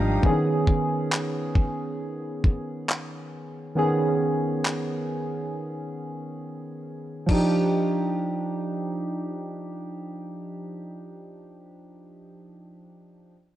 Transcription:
Already playing: G#1 D#3 F3 G3 D4 D#4 F4 G4 A#4 D#5 F5 G5 A#5 D#6
0.22 D#3 B3 C#4 G#4, kick
0.67 kick
1.12 clap
1.55 kick
2.44 kick
2.89 clap
3.75 D#3 B3 C#4 G#4
4.65 clap
7.26 F3 D4, kick, crash
7.31 D#4 G4

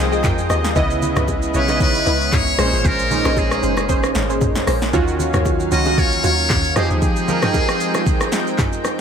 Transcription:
Already playing: C2 F3 G#3 C4 D#4 F4 G4 G#4 A#4 D#5 G5 G#5 A#5
0.12 G#4 D#5 G5, shaker
0.24 F2 G5, kick, clap, mid tom, high bongo, shaker
0.38 shaker
0.49 D#2 G4 G#4 D#5, cross-stick, low bongo, shaker
0.64 snare, shaker
0.75 C#2 C#3 G#3 B3 E4 B4 D#5, kick, low conga, shaker
0.90 shaker
1.02 low conga, shaker
1.16 C#2 E4 B4 D#5, cross-stick, mid tom, high bongo, low bongo, shaker
1.28 kick, high bongo, shaker
1.42 shaker
1.54 B1 C#3 B3 E4 B4 C#5 D#5, shaker
1.68 C#3 B3 D#4 D#5, high bongo, low bongo, shaker
1.76 E4
1.80 B4, kick, low conga, shaker
1.95 shaker
2.06 C#2 E4 B4 D#5, low bongo, shaker
2.21 shaker
2.32 C#2 C#5, kick, clap, mid tom, high bongo, shaker
2.47 shaker
2.58 A#1 A#2 G#3 A#3 C#4 G#4 C5, cross-stick, low bongo, shaker
2.73 G#1, shaker
2.85 A#1 A#4, kick, low conga, shaker
2.99 shaker
3.10 A#2 G#3 C#4 D#4, low conga, shaker
3.25 A#1 A#2 G#3 C#4 G#4 C5 D#5, cross-stick, high bongo, low bongo, shaker
3.37 G#4, kick, high bongo, shaker
3.51 cross-stick, shaker
3.63 F#1 C#4 G#4 C5, shaker
3.77 cross-stick, high bongo, low bongo, shaker
3.89 C#4 G#4 C5, kick, low conga, shaker
4.04 cross-stick, shaker
4.15 G#1, snare, low bongo, shaker
4.29 C#4 G#4 C5, shaker
4.41 C#2, kick, mid tom, high bongo, shaker
4.55 snare, shaker
4.67 A#1 C#4 G#4 C5, cross-stick, open hi-hat, low bongo, shaker
4.82 snare, shaker
4.93 D#2 D#3 F#3 C#4 F4 F#4 C#5 F5, kick, low conga, shaker
5.08 shaker
5.19 low conga, shaker
5.34 D#2 F4 F#4 C#5, cross-stick, mid tom, high bongo, low bongo, shaker
5.45 kick, high bongo, shaker
5.60 shaker
5.71 C#2 D#3 C#4 F4 F#4 C#5 D#5, shaker
5.85 D#3 C#4 F4 F#4, high bongo, low bongo, shaker
5.98 C#5, kick, low conga, shaker
6.12 shaker
6.24 D#2 F4 F#4 C#5, low bongo, shaker
6.38 shaker
6.50 D#2, kick, clap, mid tom, high bongo, shaker
6.64 shaker
6.76 F2 F3 G#3 C4 D#4 G4 G#4 C5 D#5 G5, cross-stick, low bongo, shaker
6.90 D#2 G#4, shaker
7.02 kick, low conga, shaker
7.16 shaker
7.28 F3 D#4 G4 A#4, low conga, shaker
7.42 F3 D#4 G#4 G5, cross-stick, mid tom, high bongo, low bongo, shaker
7.54 kick, high bongo, shaker
7.68 cross-stick, shaker
7.80 shaker
7.94 cross-stick, high bongo, low bongo, shaker
8.06 kick, low conga, shaker
8.21 cross-stick, shaker
8.32 snare, low bongo, shaker
8.47 shaker
8.58 kick, clap, mid tom, high bongo, shaker
8.73 shaker
8.85 cross-stick, low bongo, shaker

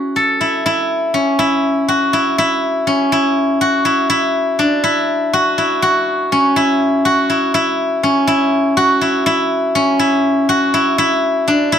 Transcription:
Already playing: C#4 E4 F#4 G#4
0.16 A4
0.41 E4
0.66 E4
1.14 C#4
1.39 E4
1.88 F#4
2.13 E4
2.38 E4
2.87 C#4
3.12 E4
3.61 F#4
3.85 E4
4.10 E4
4.59 D4
4.84 E4
5.33 F#4
5.58 E4
5.82 F#4
6.32 C#4
6.56 E4
7.05 F#4
7.30 E4
7.54 E4
8.03 C#4
8.27 E4
8.77 F#4
9.01 E4
9.26 E4
9.75 C#4
9.99 E4
10.49 F#4
10.74 E4
10.98 E4
11.48 D4
11.72 E4

